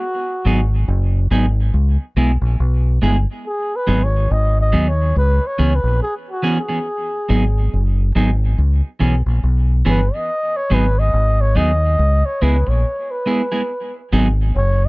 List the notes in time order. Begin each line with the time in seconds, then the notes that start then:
Already playing: F#4
0.45 G#1 F#3 B3 D#4 G#4
0.88 F#1
1.31 G#1 F#3 B3 D#4 G#4
1.74 C#2
2.16 B1 G#3 B3 E4 G#4
2.42 A#1
2.60 B1
3.02 G1 G#3 B3 E4 G#4
3.47 G#4
3.76 B4
3.87 G#1 F#3 B3 D#4 G#4
4.04 C#5
4.31 G#1 D#5
4.61 D#5
4.72 D#2 F#3 B3 D#4 G#4
4.88 C#5
5.16 C#2 B4
5.47 C#5
5.58 C#2 E3 B3 C#4 G#4
5.75 B4
5.84 A#1
6.02 G#4
6.30 F#4
6.43 E3 B3 C#4 G#4
6.59 G#4
6.69 E3 B3 C#4 G#4
7.29 G#1 F#3 B3 D#4 G#4
7.73 F#1
8.15 G#1 F#3 B3 D#4 G#4
8.58 C#2
8.99 B1 E3 B3 C#4 G#4
9.26 A#1
9.43 B1
9.85 G1 E3 B3 C#4 G#4 B4
10.14 D#5
10.56 C#5
10.70 G#1 F#3 B3 D#4 G#4 B4
10.99 D#5
11.14 G#1
11.41 C#5
11.55 D#2 F#3 B3 D#4 G#4 D#5
11.99 C#2
12.25 C#5
12.42 C#2 G#3 B3 E4 G#4 B4
12.67 A#1 C#5, muted clean electric guitar stroke
13.11 B4
13.26 G#3 B3 E4 G#4
13.52 G#3 B3 E4 G#4
14.13 G#1 F#3 B3 D#4 G#4
14.56 F#1 C#5
14.85 D#5